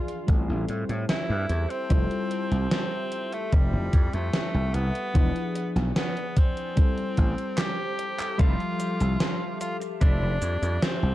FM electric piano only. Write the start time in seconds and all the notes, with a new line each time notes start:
Already playing: E3 F3 D4 G#4
0.27 G3 C4 E4 A4
1.89 G3 E4 F4 A4
5.13 F3 D4 E4 G#4
6.76 G3 C4 E4 A4
8.38 F3 G3 A4 E5